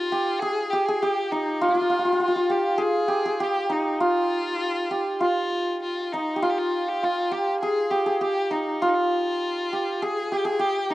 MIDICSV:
0, 0, Header, 1, 3, 480
1, 0, Start_track
1, 0, Tempo, 600000
1, 1302, Time_signature, 4, 2, 24, 8
1, 8754, End_track
2, 0, Start_track
2, 0, Title_t, "Violin"
2, 0, Program_c, 0, 40
2, 0, Note_on_c, 0, 65, 84
2, 315, Note_on_c, 0, 68, 89
2, 327, Note_off_c, 0, 65, 0
2, 558, Note_on_c, 0, 67, 75
2, 570, Note_off_c, 0, 68, 0
2, 682, Note_on_c, 0, 68, 71
2, 694, Note_off_c, 0, 67, 0
2, 816, Note_on_c, 0, 67, 76
2, 828, Note_off_c, 0, 68, 0
2, 1051, Note_on_c, 0, 63, 72
2, 1063, Note_off_c, 0, 67, 0
2, 1308, Note_on_c, 0, 65, 74
2, 1320, Note_off_c, 0, 63, 0
2, 1775, Note_off_c, 0, 65, 0
2, 1779, Note_on_c, 0, 65, 79
2, 2012, Note_on_c, 0, 67, 72
2, 2024, Note_off_c, 0, 65, 0
2, 2254, Note_on_c, 0, 68, 88
2, 2266, Note_off_c, 0, 67, 0
2, 2743, Note_on_c, 0, 67, 76
2, 2755, Note_off_c, 0, 68, 0
2, 2976, Note_on_c, 0, 63, 64
2, 2988, Note_off_c, 0, 67, 0
2, 3218, Note_off_c, 0, 63, 0
2, 3223, Note_on_c, 0, 65, 84
2, 4150, Note_off_c, 0, 65, 0
2, 4180, Note_on_c, 0, 65, 75
2, 4629, Note_off_c, 0, 65, 0
2, 4661, Note_on_c, 0, 65, 70
2, 4900, Note_on_c, 0, 63, 67
2, 4912, Note_off_c, 0, 65, 0
2, 5146, Note_on_c, 0, 65, 69
2, 5158, Note_off_c, 0, 63, 0
2, 5199, Note_on_c, 0, 67, 61
2, 5211, Note_off_c, 0, 65, 0
2, 5266, Note_on_c, 0, 65, 68
2, 5278, Note_off_c, 0, 67, 0
2, 5508, Note_on_c, 0, 67, 73
2, 5520, Note_off_c, 0, 65, 0
2, 5636, Note_on_c, 0, 65, 83
2, 5648, Note_off_c, 0, 67, 0
2, 5858, Note_on_c, 0, 67, 72
2, 5870, Note_off_c, 0, 65, 0
2, 6077, Note_off_c, 0, 67, 0
2, 6082, Note_on_c, 0, 68, 74
2, 6320, Note_on_c, 0, 67, 64
2, 6332, Note_off_c, 0, 68, 0
2, 6566, Note_off_c, 0, 67, 0
2, 6570, Note_on_c, 0, 67, 76
2, 6810, Note_on_c, 0, 63, 63
2, 6822, Note_off_c, 0, 67, 0
2, 7051, Note_on_c, 0, 65, 64
2, 7063, Note_off_c, 0, 63, 0
2, 7108, Note_on_c, 0, 63, 62
2, 7120, Note_off_c, 0, 65, 0
2, 7153, Note_on_c, 0, 65, 78
2, 7165, Note_off_c, 0, 63, 0
2, 8024, Note_on_c, 0, 68, 80
2, 8036, Note_off_c, 0, 65, 0
2, 8269, Note_on_c, 0, 67, 69
2, 8281, Note_off_c, 0, 68, 0
2, 8362, Note_on_c, 0, 68, 77
2, 8374, Note_off_c, 0, 67, 0
2, 8483, Note_on_c, 0, 67, 81
2, 8495, Note_off_c, 0, 68, 0
2, 8744, Note_off_c, 0, 67, 0
2, 8754, End_track
3, 0, Start_track
3, 0, Title_t, "Santur"
3, 0, Program_c, 1, 15
3, 0, Note_on_c, 1, 63, 69
3, 0, Note_on_c, 1, 65, 91
3, 0, Note_on_c, 1, 67, 83
3, 93, Note_off_c, 1, 67, 0
3, 96, Note_on_c, 1, 67, 82
3, 337, Note_on_c, 1, 68, 93
3, 385, Note_off_c, 1, 67, 0
3, 583, Note_on_c, 1, 67, 86
3, 631, Note_off_c, 1, 68, 0
3, 708, Note_on_c, 1, 68, 90
3, 756, Note_off_c, 1, 67, 0
3, 820, Note_on_c, 1, 67, 92
3, 868, Note_off_c, 1, 68, 0
3, 1052, Note_off_c, 1, 63, 0
3, 1055, Note_on_c, 1, 63, 71
3, 1288, Note_off_c, 1, 65, 0
3, 1291, Note_on_c, 1, 65, 88
3, 1344, Note_off_c, 1, 65, 0
3, 1347, Note_on_c, 1, 65, 65
3, 1394, Note_off_c, 1, 65, 0
3, 1398, Note_on_c, 1, 65, 70
3, 1446, Note_off_c, 1, 65, 0
3, 1449, Note_on_c, 1, 65, 57
3, 1514, Note_off_c, 1, 65, 0
3, 1518, Note_on_c, 1, 65, 65
3, 1588, Note_off_c, 1, 65, 0
3, 1592, Note_on_c, 1, 65, 54
3, 1636, Note_off_c, 1, 65, 0
3, 1639, Note_on_c, 1, 65, 55
3, 1696, Note_off_c, 1, 65, 0
3, 1699, Note_on_c, 1, 65, 53
3, 1754, Note_off_c, 1, 65, 0
3, 1757, Note_on_c, 1, 65, 54
3, 1820, Note_off_c, 1, 65, 0
3, 1823, Note_on_c, 1, 65, 55
3, 1882, Note_off_c, 1, 65, 0
3, 1885, Note_on_c, 1, 65, 61
3, 1994, Note_off_c, 1, 67, 0
3, 1997, Note_on_c, 1, 67, 73
3, 2223, Note_on_c, 1, 68, 94
3, 2271, Note_off_c, 1, 67, 0
3, 2464, Note_on_c, 1, 67, 86
3, 2512, Note_off_c, 1, 68, 0
3, 2604, Note_on_c, 1, 68, 80
3, 2652, Note_off_c, 1, 67, 0
3, 2721, Note_on_c, 1, 67, 90
3, 2769, Note_off_c, 1, 68, 0
3, 2953, Note_off_c, 1, 63, 0
3, 2956, Note_on_c, 1, 63, 80
3, 3200, Note_off_c, 1, 65, 0
3, 3203, Note_on_c, 1, 65, 86
3, 3923, Note_off_c, 1, 67, 0
3, 3926, Note_on_c, 1, 67, 77
3, 4161, Note_off_c, 1, 65, 0
3, 4164, Note_on_c, 1, 65, 82
3, 4905, Note_off_c, 1, 63, 0
3, 4908, Note_on_c, 1, 63, 77
3, 5085, Note_off_c, 1, 67, 0
3, 5088, Note_on_c, 1, 67, 67
3, 5136, Note_off_c, 1, 65, 0
3, 5139, Note_on_c, 1, 65, 89
3, 5622, Note_off_c, 1, 65, 0
3, 5625, Note_on_c, 1, 65, 67
3, 5848, Note_off_c, 1, 67, 0
3, 5851, Note_on_c, 1, 67, 76
3, 6101, Note_on_c, 1, 68, 86
3, 6149, Note_off_c, 1, 67, 0
3, 6326, Note_on_c, 1, 67, 81
3, 6374, Note_off_c, 1, 68, 0
3, 6448, Note_on_c, 1, 68, 79
3, 6496, Note_off_c, 1, 67, 0
3, 6568, Note_on_c, 1, 67, 81
3, 6616, Note_off_c, 1, 68, 0
3, 6802, Note_off_c, 1, 63, 0
3, 6806, Note_on_c, 1, 63, 75
3, 7052, Note_off_c, 1, 65, 0
3, 7055, Note_on_c, 1, 65, 92
3, 7780, Note_off_c, 1, 67, 0
3, 7783, Note_on_c, 1, 67, 71
3, 8017, Note_on_c, 1, 68, 90
3, 8065, Note_off_c, 1, 67, 0
3, 8255, Note_on_c, 1, 67, 82
3, 8303, Note_off_c, 1, 68, 0
3, 8358, Note_on_c, 1, 68, 87
3, 8406, Note_off_c, 1, 67, 0
3, 8475, Note_on_c, 1, 67, 85
3, 8523, Note_off_c, 1, 68, 0
3, 8717, Note_off_c, 1, 63, 0
3, 8721, Note_on_c, 1, 63, 67
3, 8754, Note_off_c, 1, 63, 0
3, 8754, Note_off_c, 1, 65, 0
3, 8754, Note_off_c, 1, 67, 0
3, 8754, End_track
0, 0, End_of_file